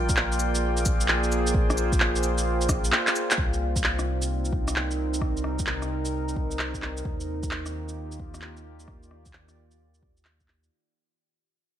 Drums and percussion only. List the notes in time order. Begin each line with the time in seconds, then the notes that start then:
0.09 kick, shaker
0.17 clap
0.32 shaker
0.40 cabasa
0.55 shaker
0.77 shaker
0.85 kick, cabasa
1.01 shaker
1.08 clap
1.24 shaker
1.32 cabasa
1.47 shaker
1.54 kick
1.70 cross-stick, shaker
1.78 cabasa
1.92 kick, shaker
2.00 clap
2.16 shaker
2.23 cabasa
2.38 shaker
2.61 shaker
2.69 kick, cross-stick, cabasa
2.84 shaker
2.92 cross-stick, clap
3.07 clap, shaker
3.16 cabasa
3.31 clap, shaker
3.38 kick
3.53 shaker
3.76 kick, shaker
3.84 clap
3.99 cross-stick, shaker
4.22 shaker
4.45 shaker
4.53 kick
4.68 cross-stick, shaker
4.76 clap
4.91 shaker
5.14 shaker
5.21 kick, cross-stick
5.37 shaker
5.44 cross-stick
5.59 kick, shaker
5.67 clap
5.82 cross-stick, shaker
6.05 shaker
6.29 shaker
6.36 kick
6.51 shaker
6.59 clap
6.74 kick, shaker
6.82 clap
6.97 shaker
7.05 kick
7.20 shaker
7.43 kick, shaker
7.51 clap
7.66 cross-stick, shaker
7.89 shaker
8.12 shaker
8.20 kick
8.34 cross-stick, shaker
8.42 clap
8.57 shaker
8.80 shaker
8.88 kick, cross-stick
9.03 shaker
9.11 cross-stick
9.25 kick, shaker
9.33 clap
9.49 cross-stick, shaker
9.71 shaker
9.94 shaker
10.03 kick
10.17 shaker
10.25 clap
10.40 kick, shaker
10.48 clap
10.63 shaker